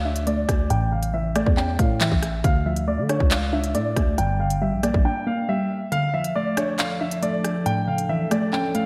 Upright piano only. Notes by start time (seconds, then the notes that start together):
0.05 E5
0.27 D5
0.70 G5
0.92 F5
1.14 E5
1.36 D5
1.57 G5
1.79 F5
2.01 E5
2.44 F5
2.66 E5
2.88 D5
3.09 C#5
3.31 F5
3.53 E5
3.75 D5
4.18 G5
4.40 F5
4.62 E5
4.83 D5
5.05 G5
5.27 F5
5.49 E5
5.92 F5
6.14 E5
6.36 D5
6.57 C#5
6.79 F5
7.01 E5
7.23 D5
7.66 G5
7.88 F5
8.09 E5
8.31 D5
8.53 G5
8.75 F5